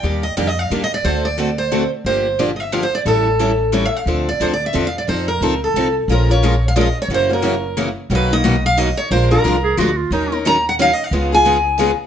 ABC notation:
X:1
M:3/4
L:1/16
Q:"Swing" 1/4=179
K:Dm
V:1 name="Steel-string acoustic guitar"
g2 _e2 (3d2 e2 f2- (3f2 e2 d2 | c2 d4 c4 z2 | c4 d3/2 _e/2 =e2 (3f2 c2 d2 | A8 (3^c2 e2 f2- |
f2 d2 (3c2 d2 e2- (3e2 f2 d2 | c2 B4 A4 z2 | [K:Bbm] B2 d4 f3/2 =d/2 e2 _d2 | c2 B6 z4 |
=B2 ^d4 f2 d2 _d2 | c2 B6 z4 | z4 b2 g2 (3f2 e2 f2- | f2 a8 z2 |]
V:2 name="Clarinet"
z12 | z12 | z12 | z12 |
z12 | z12 | [K:Bbm] z12 | z12 |
z12 | z6 A2 G2 F2 | E3 z8 z | z12 |]
V:3 name="Steel-string acoustic guitar"
[_E,G,B,DG]2 z2 [E,G,B,DG] z3 [E,G,B,DG] z3 | [D,A,C^FA]2 z2 [D,A,CFA] z3 [D,A,CFA] z3 | [D,F,B,DG]2 z2 [D,F,B,DG] z3 [D,F,B,DG] z3 | [E,G,^CEA]2 z2 [E,G,CEA] z3 [E,G,CEA] z3 |
[D,F,CDA]2 z2 [D,F,CDA] z3 [D,F,CDA] z3 | [F,C_EA]2 z2 [F,CEA] z3 [F,CEA] z3 | [K:Bbm] [F,A,DFB]2 [DFB]2 [F,A,DFB] z3 [F,A,DFB] z3 | [D,_F,B,DG]2 [B,DG]2 [D,F,B,DG] z3 [D,F,B,DG] z3 |
[=B,,^F,^A,^D^F]2 [A,DF]2 [B,,F,A,DF] z3 [B,,F,A,DF] z3 | [F,A,=DFB]2 [DFB]2 [F,A,DFB] z3 [F,A,DFB] z3 | [E,G,DEB]2 [DEB]2 [E,G,DEB] z3 [E,G,DEB] z3 | [D,A,_CFA]2 [CFA]2 [D,A,CFA] z3 [D,A,CFA] z3 |]
V:4 name="Steel-string acoustic guitar"
[_E,G,B,DG]2 z2 [E,G,B,DG] z3 [E,G,B,DG] z3 | [D,A,C^FA]2 z2 [D,A,CFA] z3 [D,A,CFA] z3 | [D,F,B,DG]2 z2 [D,F,B,DG] z3 [D,F,B,DG] z3 | [E,G,^CEA]2 z2 [E,G,CEA] z3 [E,G,CEA] z3 |
[D,F,CDA]2 z2 [D,F,CDA] z3 [D,F,CDA] z3 | [F,C_EA]2 z2 [F,CEA] z3 [F,CEA] z3 | [K:Bbm] [F,A,DFB]2 z2 [F,A,DFB] z3 [F,A,DFB] z3 | [G,D_FB]2 z2 [G,DFB] z3 [G,DFB] z3 |
[=B,,^D,^F,=B,^D^A]2 z2 [B,,D,F,B,DA] z3 [B,,D,F,B,DA] z3 | [F,A,=DFB]2 z2 [F,A,DFB] z3 [F,A,DFB] z3 | [E,G,DEB]2 z2 [E,G,DEB] z3 [E,G,DEB] z3 | [D,A,_CFA]2 z2 [D,A,CFA] z3 [D,A,CFA] z3 |]
V:5 name="Upright bass" clef=bass
_E,,4 F,,4 E,,4 | D,,12 | G,,,12 | A,,,12 |
D,,4 D,,4 E,,4 | F,,4 ^C,,4 =C,,4 | [K:Bbm] B,,,12 | G,,,12 |
=B,,,12 | B,,,4 C,,4 =D,,4 | E,,12 | D,,12 |]